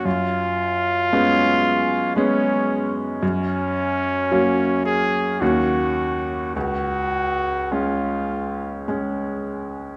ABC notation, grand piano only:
X:1
M:3/4
L:1/8
Q:1/4=54
K:C#mix
V:1 name="Grand piano"
F,,2 [G,B,C]2 [G,B,C]2 | F,,2 [F,A,C]2 [D,,F,A,C]2 | C,,2 [G,C]2 [G,C]2 |]